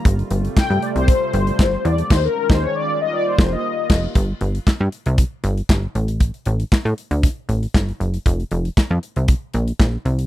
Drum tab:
CC |----------------|x-------------x-|----------------|----------------|
HH |xxxx-xxxx-xx--xx|----------------|x-xx--xxx-xx--xx|xxxx-xxxx-xx-xxx|
CP |----x-------x---|----------------|----x-------x---|----x-------x---|
SD |----o-------o---|o--o------o---o-|----o-------o---|----o-------o---|
BD |o---o---o---o---|o--o------o---o-|o---o---o---o---|o---o---o---o---|

CC |----------------|
HH |xxxx--xxx-xx--xx|
CP |----x-------x---|
SD |----o-------o---|
BD |o---o---o---o---|